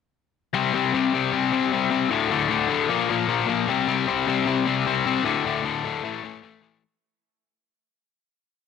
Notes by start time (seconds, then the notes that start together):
0.53 C3 G3 C4
0.73 C3 G3 C4
0.93 C3 G3 C4
1.13 C3 G3 C4
1.32 C3 G3 C4
1.52 C3 G3 C4
1.72 C3 G3 C4
1.91 C3 G3 C4
2.10 D2 A2 D3
2.30 D2 A2 D3
2.49 D2 A2 D3
2.68 D2 A2 D3
2.89 A#2 F3 A#3
3.09 A#2 F3 A#3
3.27 A#2 F3 A#3
3.48 A#2 F3 A#3
3.68 C3 G3 C4
3.88 C3 G3 C4
4.08 C3 G3 C4
4.27 C3 G3 C4
4.45 C3 G3 C4
4.66 C3 G3 C4
4.86 C3 G3 C4
5.06 C3 G3 C4
5.23 D2 A2 D3
5.45 D2 A2 D3
5.62 D2 A2 D3
5.84 D2 A2 D3
6.03 A2 E3 A3
6.23 A2 E3 A3
6.43 A2 E3 A3
6.61 A2 E3 A3